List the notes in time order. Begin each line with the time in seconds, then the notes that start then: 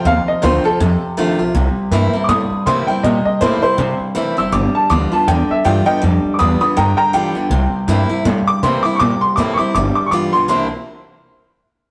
0.05 D#2 F2 C3 F5
0.27 D#5, muted upright bass stroke
0.42 D2 F2 D3 D#3 A3 C4 F4 C5
0.64 F2 C3 C4 F4 A4
0.80 F2 C3
1.02 muted upright bass stroke
1.17 F2 D3 D#3 A3 C4 F4
1.39 A#1 F2 C3 C4 F4
1.54 C2 C3 G3
1.77 muted upright bass stroke
1.91 G2 C3 E3 A3 A#3 C4 E4
2.13 C3 G3 C4 E4, muted upright bass stroke
2.24 D6
2.29 G2 A2 C3 G3 D#6
2.51 muted upright bass stroke
2.66 C3 E3 A3 A#3 C4 E4 C6
2.87 C3 G3 C4 E4 G5, muted upright bass stroke
3.03 A#2 C3 G3 D#5
3.25 D#5, muted upright bass stroke
3.41 A2 C3 E3 A3 A#3 C4 E4 C5
3.62 C3 G3 C4 E4 C5, muted upright bass stroke
3.78 G2 C3 G3
4.00 muted upright bass stroke
4.15 C3 E3 A3 A#3 C4 E4
4.37 F#1 C3 G3 C4 E4 E6
4.52 G1 G2 D3 G3 D6
4.75 A5, muted upright bass stroke
4.90 D2 G2 E3 G3 B3 F4 D6
5.11 G2 D3 B3 F4 A5
5.27 E2 G2 D3 G5
5.50 E5, muted upright bass stroke
5.64 G2 E3 G3 B3 F4 G5
5.86 G2 D3 B3 F4 D#5 G5, muted upright bass stroke
6.02 F2 G2 D3 G3
6.25 muted upright bass stroke
6.34 D6
6.39 E2 G2 E3 G3 B3 F4 B5 D#6
6.61 G2 D3 B3 F4 B5 D#6, muted upright bass stroke
6.76 G2 D3 G5 A#5
6.97 G5 A#5
7.13 G2 E3 G3 B3 F4 G5
7.35 D2 G2 D3 B3 F4
7.50 C2 C3 G3
7.72 muted upright bass stroke
7.88 G2 C3 E3 A3 A#3 C4 E4
8.09 C3 G3 C4 E4, muted upright bass stroke
8.25 G2 A2 C3 G3
8.47 D6, muted upright bass stroke
8.63 C3 E3 A3 A#3 C4 E4 C6
8.83 C3 G3 C4 E4 D6, muted upright bass stroke
8.95 C#6
8.99 A#2 C3 G3 D6
9.21 C6, muted upright bass stroke
9.36 A2 C3 E3 A3 A#3 C4 E4 D6
9.54 C#6 D6
9.59 C3 G3 C4 E4, muted upright bass stroke
9.75 G1 G2 D3 G3 D6
9.95 D6, muted upright bass stroke
10.06 C#6
10.11 G2 E3 G3 B3 F4 D6
10.33 B1 G2 D3 B3 F4 C6
10.48 C2 C3 E3 A#3 C4 D4 E4 C6